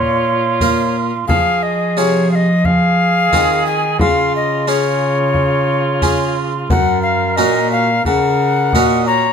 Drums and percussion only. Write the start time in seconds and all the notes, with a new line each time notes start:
0.60 frame drum
1.29 frame drum
2.64 frame drum
3.33 frame drum
3.99 frame drum
5.34 frame drum
6.02 frame drum
6.70 frame drum
8.05 frame drum
8.73 frame drum